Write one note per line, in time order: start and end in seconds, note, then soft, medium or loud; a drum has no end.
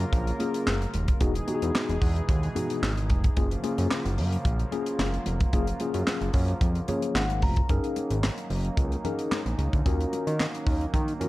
0.00 1.18 C#3 medium
0.00 1.18 F#3 medium
0.00 1.19 A#3 medium
0.00 1.18 F4 medium
0.00 1.19 A#4 medium
0.00 closed hi-hat soft
0.13 0.32 A#1 loud
0.13 kick loud
0.13 closed hi-hat medium
0.13 muted conga soft
0.27 closed hi-hat medium
0.39 0.74 A#3 medium
0.39 0.74 C#4 medium
0.39 0.74 F4 medium
0.39 0.75 G#4 medium
0.39 closed hi-hat medium
0.39 muted conga medium
0.54 closed hi-hat medium
0.67 0.86 F#1 loud
0.67 snare loud
0.67 clap loud
0.67 high conga medium
0.82 closed hi-hat soft
0.94 1.13 D#1 medium
0.94 closed hi-hat medium
0.94 high conga medium
1.08 kick loud
1.08 closed hi-hat medium
1.20 1.40 E1 loud
1.20 3.35 B2 medium
1.20 3.35 E3 medium
1.20 3.35 G#3 medium
1.20 1.33 B3 medium
1.20 1.33 D#4 medium
1.20 3.35 D#4 medium
1.20 1.33 F#4 medium
1.20 1.33 G#4 medium
1.20 3.35 G#4 medium
1.20 kick loud
1.20 closed hi-hat medium
1.20 muted conga medium
1.35 closed hi-hat medium
1.47 1.94 B3 medium
1.47 1.94 D#4 medium
1.47 1.94 F#4 medium
1.47 1.55 G4 medium
1.47 closed hi-hat medium
1.47 muted conga medium
1.55 1.97 G#4 medium
1.62 1.71 E2 medium
1.62 closed hi-hat medium
1.75 snare loud
1.75 clap medium
1.75 high conga medium
1.89 1.98 E1 loud
1.89 closed hi-hat soft
2.02 2.21 E2 loud
2.02 kick loud
2.02 open hi-hat medium
2.16 closed hi-hat soft
2.29 2.48 D#2 loud
2.29 kick loud
2.29 closed hi-hat medium
2.29 muted conga soft
2.43 closed hi-hat soft
2.55 2.90 B3 medium
2.55 2.90 D#4 medium
2.55 2.91 F#4 medium
2.55 2.91 G#4 medium
2.55 closed hi-hat medium
2.55 muted conga soft
2.55 low conga medium
2.70 closed hi-hat medium
2.82 3.11 G#1 medium
2.82 snare loud
2.82 clap medium
2.82 high conga medium
2.98 closed hi-hat medium
3.10 3.30 F1 medium
3.10 kick medium
3.10 closed hi-hat medium
3.10 high conga medium
3.24 kick loud
3.24 closed hi-hat medium
3.37 3.56 F#1 loud
3.37 5.51 C#3 medium
3.37 5.51 F3 medium
3.37 7.66 F#3 medium
3.37 3.49 A#3 medium
3.37 7.66 A#3 medium
3.37 3.49 C#4 medium
3.37 3.49 F4 medium
3.37 7.66 F4 medium
3.37 3.49 G#4 loud
3.37 kick loud
3.37 closed hi-hat medium
3.37 muted conga medium
3.51 closed hi-hat medium
3.64 4.10 A#3 medium
3.64 4.10 C#4 medium
3.64 4.10 F4 medium
3.64 4.10 G#4 medium
3.64 closed hi-hat medium
3.64 muted conga medium
3.78 3.87 F#2 loud
3.78 closed hi-hat medium
3.91 snare loud
3.91 clap loud
3.91 high conga medium
4.05 4.19 F#1 loud
4.05 closed hi-hat medium
4.17 4.37 F#2 loud
4.17 open hi-hat medium
4.33 closed hi-hat soft
4.45 4.65 A#1 loud
4.45 kick loud
4.45 closed hi-hat medium
4.45 muted conga soft
4.59 closed hi-hat medium
4.72 5.06 A#3 medium
4.72 5.07 C#4 medium
4.72 5.07 F4 medium
4.72 5.07 G#4 medium
4.72 closed hi-hat medium
4.72 muted conga medium
4.86 closed hi-hat medium
4.99 5.19 F#1 loud
4.99 snare loud
4.99 clap medium
4.99 high conga medium
5.14 closed hi-hat soft
5.26 5.46 F1 medium
5.26 closed hi-hat medium
5.26 high conga medium
5.40 kick loud
5.40 closed hi-hat medium
5.53 5.73 F#1 loud
5.53 7.67 C#3 medium
5.53 7.67 F3 medium
5.53 5.65 A#3 medium
5.53 5.65 C#4 medium
5.53 5.66 F4 medium
5.53 5.66 G#4 loud
5.53 kick loud
5.53 closed hi-hat medium
5.53 muted conga medium
5.67 closed hi-hat medium
5.80 6.26 A#3 medium
5.80 6.27 C#4 medium
5.80 6.27 F4 medium
5.80 6.27 G#4 medium
5.80 closed hi-hat medium
5.80 muted conga soft
5.94 6.04 F#2 medium
5.94 closed hi-hat medium
6.07 snare loud
6.07 clap medium
6.07 high conga medium
6.21 6.31 F#1 medium
6.21 closed hi-hat soft
6.34 6.54 F#2 loud
6.34 kick loud
6.34 open hi-hat medium
6.48 closed hi-hat soft
6.61 6.81 F2 medium
6.61 kick loud
6.61 closed hi-hat medium
6.61 muted conga soft
6.75 closed hi-hat medium
6.88 7.23 A#3 medium
6.88 7.23 C#4 medium
6.88 7.23 F4 medium
6.88 7.23 G#4 medium
6.88 7.14 C#5 medium
6.88 closed hi-hat medium
6.88 muted conga medium
6.88 low conga medium
7.02 closed hi-hat medium
7.15 7.44 G#1 medium
7.15 7.41 F#5 medium
7.15 snare loud
7.15 clap loud
7.15 high conga medium
7.30 closed hi-hat soft
7.42 7.62 F1 loud
7.42 7.68 A#5 medium
7.42 kick medium
7.42 open hi-hat medium
7.42 high conga medium
7.56 kick loud
7.56 closed hi-hat medium
7.69 7.80 F#1 loud
7.69 9.84 D#3 medium
7.69 9.84 F#3 medium
7.69 9.84 A#3 medium
7.69 8.15 C#4 medium
7.69 11.29 C#4 medium
7.69 8.16 D#4 medium
7.69 11.29 D#4 loud
7.69 8.16 G#4 medium
7.69 8.16 A#4 loud
7.69 kick loud
7.69 closed hi-hat medium
7.69 muted conga medium
7.84 closed hi-hat medium
7.96 closed hi-hat medium
7.96 muted conga medium
8.10 8.30 G#1 medium
8.10 closed hi-hat medium
8.24 snare loud
8.24 clap medium
8.24 high conga medium
8.38 closed hi-hat medium
8.50 8.70 F#1 medium
8.50 open hi-hat medium
8.65 closed hi-hat soft
8.77 8.97 C#2 medium
8.77 kick loud
8.77 closed hi-hat medium
8.92 closed hi-hat soft
9.05 9.39 C#4 medium
9.05 9.39 D#4 medium
9.05 9.39 G#4 medium
9.05 9.40 A#4 medium
9.05 closed hi-hat medium
9.05 muted conga soft
9.05 low conga medium
9.19 closed hi-hat soft
9.32 snare loud
9.32 clap loud
9.32 high conga medium
9.46 9.55 A#1 medium
9.46 closed hi-hat soft
9.58 9.69 C#2 medium
9.58 closed hi-hat medium
9.58 high conga medium
9.73 9.82 D2 medium
9.73 kick medium
9.73 closed hi-hat medium
9.85 10.05 D#2 loud
9.85 11.29 D#3 medium
9.85 11.29 F#3 medium
9.85 11.29 A#3 medium
9.85 10.32 C#4 medium
9.85 10.32 F4 medium
9.85 10.32 F#4 medium
9.85 10.32 A#4 medium
9.85 kick loud
9.85 closed hi-hat medium
9.85 muted conga medium
10.01 closed hi-hat medium
10.13 closed hi-hat medium
10.13 muted conga medium
10.27 10.47 D#3 medium
10.27 closed hi-hat medium
10.40 snare loud
10.40 clap medium
10.40 high conga medium
10.55 closed hi-hat medium
10.66 10.86 D#2 medium
10.66 kick loud
10.66 open hi-hat medium
10.81 closed hi-hat soft
10.94 11.13 D#3 loud
10.94 kick loud
10.94 closed hi-hat medium
10.94 muted conga soft
10.94 low conga medium
11.08 closed hi-hat medium
11.20 11.29 C#4 medium
11.20 11.29 F4 medium
11.20 11.29 F#4 medium
11.20 11.29 A#4 medium
11.20 closed hi-hat medium
11.20 muted conga soft
11.20 low conga medium